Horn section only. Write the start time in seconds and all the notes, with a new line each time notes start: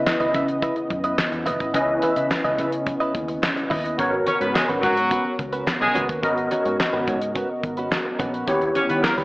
4.27 C#4 C#5
4.41 B3 B4
4.54 G#3 G#4
4.82 F#3 F#4
5.81 G#3 G#4
8.75 C#4 C#5
8.89 B3 B4
9.03 A#3 A#4